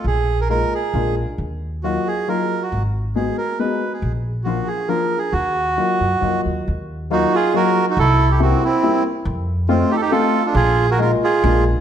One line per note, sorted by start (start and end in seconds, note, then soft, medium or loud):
0.04 0.62 A#1 medium
0.04 0.41 G#4 loud
0.41 0.48 A#4 medium
0.49 0.73 G#3 medium
0.49 0.73 A#3 soft
0.49 0.73 D#4 soft
0.49 0.73 F4 medium
0.49 0.74 A#4 medium
0.74 1.15 G#4 medium
0.94 1.23 A#1 medium
0.94 1.18 G#3 soft
0.94 1.18 A#3 soft
0.94 1.18 D4 soft
0.94 1.18 F4 medium
1.38 1.96 D#2 medium
1.83 2.07 F#3 medium
1.83 2.08 A#3 soft
1.83 2.08 D#4 medium
1.83 2.08 F4 medium
1.83 2.08 F#4 medium
2.07 2.29 G#4 medium
2.28 2.51 F#3 medium
2.28 2.51 A#3 soft
2.28 2.52 D#4 medium
2.28 2.52 F4 medium
2.28 2.63 A#4 medium
2.63 2.83 F#4 medium
2.72 3.28 G#1 medium
3.15 3.38 G#3 medium
3.15 3.38 B3 medium
3.15 3.39 D#4 soft
3.15 3.38 F#4 medium
3.15 3.37 G#4 medium
3.37 3.59 A#4 medium
3.59 3.82 G#3 medium
3.59 3.82 B3 medium
3.59 3.82 D#4 soft
3.59 3.82 F#4 medium
3.59 3.93 B4 medium
3.93 4.12 G#4 medium
4.02 4.59 A#1 medium
4.44 4.68 F3 medium
4.44 4.68 A#3 soft
4.44 4.69 D4 soft
4.44 4.69 F4 medium
4.44 4.68 F#4 medium
4.67 4.89 G#4 medium
4.88 5.12 F3 medium
4.88 5.12 A#3 medium
4.88 5.12 D4 medium
4.88 5.12 F4 medium
4.88 5.19 A#4 medium
5.18 5.33 G#4 medium
5.32 5.77 D#2 medium
5.32 6.41 F#4 medium
5.77 6.01 F#3 medium
5.77 6.01 A#3 soft
5.77 6.01 D#4 soft
5.77 6.01 F4 medium
6.00 6.19 F#2 medium
6.21 6.43 F2 medium
6.21 6.45 F#3 medium
6.21 6.46 A#3 medium
6.21 6.46 D#4 medium
6.21 6.46 F4 medium
6.45 6.64 D#2 soft
6.68 7.24 D#2 medium
7.10 7.33 F#3 medium
7.10 7.33 A#3 medium
7.10 7.34 D#4 medium
7.10 7.33 D#4 medium
7.10 7.34 F4 medium
7.10 7.35 F#4 medium
7.34 7.53 F4 medium
7.34 7.55 G#4 loud
7.54 7.77 F#3 medium
7.54 7.77 A#3 medium
7.54 7.77 D#4 medium
7.54 7.77 F4 medium
7.54 7.85 F#4 medium
7.54 7.86 A#4 loud
7.90 7.98 D#4 medium
7.90 7.99 F#4 medium
7.97 8.52 C2 medium
7.97 8.29 E4 medium
7.97 8.32 A4 loud
8.31 8.40 E4 medium
8.31 8.41 G4 medium
8.40 8.63 G3 medium
8.40 8.63 A#3 medium
8.40 8.63 C4 medium
8.40 8.62 C4 medium
8.40 8.62 E4 medium
8.40 8.64 F#4 medium
8.64 9.04 C4 medium
8.64 9.03 E4 medium
8.82 9.05 G3 medium
8.82 9.05 A#3 medium
8.82 9.06 C4 medium
8.82 9.06 E4 medium
9.25 9.82 F2 medium
9.69 9.91 A3 medium
9.69 9.92 C4 medium
9.69 9.90 C4 medium
9.69 9.91 D#4 medium
9.69 9.92 F4 medium
9.91 9.96 D#4 medium
9.91 9.96 G4 medium
9.96 10.01 A4 medium
10.01 10.11 D#4 medium
10.01 10.12 G4 medium
10.11 10.35 A3 medium
10.11 10.35 C4 medium
10.11 10.35 D#4 medium
10.11 10.43 F4 medium
10.11 10.35 F4 medium
10.11 10.46 A4 medium
10.46 10.55 D4 medium
10.46 10.54 F4 medium
10.55 11.12 A#1 medium
10.55 10.87 F4 medium
10.55 10.90 G#4 loud
10.91 11.00 F#4 medium
10.91 11.00 A#4 medium
10.98 11.22 G#3 medium
10.98 11.22 A#3 medium
10.98 11.23 D#4 medium
10.98 11.23 F4 medium
10.98 11.12 F4 medium
10.98 11.11 A#4 medium
11.24 11.64 F4 medium
11.24 11.64 G#4 medium
11.43 11.72 A#1 loud
11.43 11.67 G#3 medium
11.43 11.67 A#3 medium
11.43 11.67 D4 medium
11.43 11.67 F4 medium